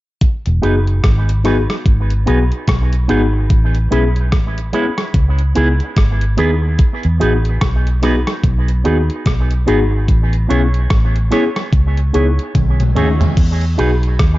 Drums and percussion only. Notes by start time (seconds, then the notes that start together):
0.21 kick, closed hi-hat
0.46 closed hi-hat
0.63 closed hi-hat
0.87 closed hi-hat
1.04 kick, cross-stick, closed hi-hat
1.29 closed hi-hat
1.45 cross-stick, closed hi-hat
1.70 cross-stick, closed hi-hat
1.86 kick, closed hi-hat
2.10 closed hi-hat
2.27 closed hi-hat
2.52 closed hi-hat
2.68 kick, cross-stick, closed hi-hat
2.93 closed hi-hat
3.09 closed hi-hat
3.50 kick, closed hi-hat
3.75 closed hi-hat
3.92 closed hi-hat
4.16 closed hi-hat
4.32 kick, cross-stick, closed hi-hat
4.58 closed hi-hat
4.73 closed hi-hat
4.98 cross-stick, closed hi-hat
5.14 kick, closed hi-hat
5.39 closed hi-hat
5.55 closed hi-hat
5.80 closed hi-hat
5.96 kick, cross-stick, closed hi-hat
6.21 closed hi-hat
6.38 closed hi-hat
6.79 kick, closed hi-hat
7.03 closed hi-hat
7.21 closed hi-hat
7.45 closed hi-hat
7.61 kick, cross-stick, closed hi-hat
7.87 closed hi-hat
8.03 cross-stick, closed hi-hat
8.27 cross-stick, closed hi-hat
8.44 kick, closed hi-hat
8.68 closed hi-hat
8.85 closed hi-hat
9.10 closed hi-hat
9.26 kick, cross-stick, closed hi-hat
9.51 closed hi-hat
9.68 closed hi-hat
10.08 kick, closed hi-hat
10.33 closed hi-hat
10.51 closed hi-hat
10.74 closed hi-hat
10.90 kick, cross-stick, closed hi-hat
11.16 closed hi-hat
11.32 cross-stick, closed hi-hat
11.56 cross-stick, closed hi-hat
11.73 kick, closed hi-hat
11.97 closed hi-hat
12.14 closed hi-hat
12.39 closed hi-hat
12.55 kick, closed hi-hat, high tom
12.80 closed hi-hat, mid tom
12.96 closed hi-hat, mid tom
13.21 closed hi-hat, floor tom
13.37 kick, closed hi-hat, crash
13.61 closed hi-hat
13.79 closed hi-hat
14.03 closed hi-hat
14.19 kick, cross-stick, closed hi-hat